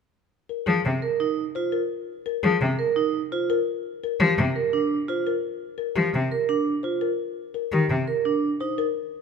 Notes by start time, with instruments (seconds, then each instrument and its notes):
0.49 marimba A#4
0.66 cello F3, marimba G#4
0.85 cello C3
1.02 vibraphone A#4
1.20 vibraphone D#4
1.55 vibraphone F4, marimba C5
1.72 marimba A#4
2.26 marimba A#4
2.43 cello F3, marimba G#4
2.61 cello C3
2.79 vibraphone A#4
2.96 vibraphone D#4
3.32 vibraphone F4, marimba C5
3.50 marimba A#4
4.04 marimba A#4
4.20 cello F3, marimba G4
4.38 cello C3
4.56 vibraphone A#4
4.73 vibraphone D4
5.08 vibraphone F4, marimba C5
5.27 marimba A#4
5.78 marimba A#4
5.96 cello F3, marimba G4
6.14 cello C3
6.32 vibraphone A#4
6.49 vibraphone D4
6.83 vibraphone F4, marimba C5
7.01 marimba A#4
7.54 marimba A#4
7.72 cello D#3, marimba G4
7.90 cello C3
8.08 vibraphone A#4
8.25 vibraphone D4
8.60 vibraphone D#4, marimba C5
8.78 marimba A#4